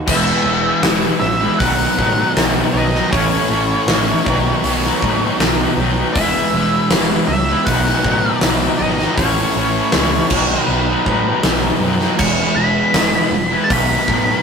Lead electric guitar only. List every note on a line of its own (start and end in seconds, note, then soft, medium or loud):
0.07 0.80 E5 loud
1.20 1.60 E5 medium
1.58 2.31 F#5 loud
2.73 3.11 D#5 medium
3.12 5.36 C#5 loud
6.14 6.86 E5 loud
7.28 7.67 E5 loud
7.65 8.38 F#5 loud
8.77 9.14 D#5 loud
9.17 10.61 C#5 loud
10.61 11.40 B4 loud
12.19 12.55 C#6 loud
12.56 13.59 B5 loud
13.64 13.71 A5 medium
13.73 14.43 B5 loud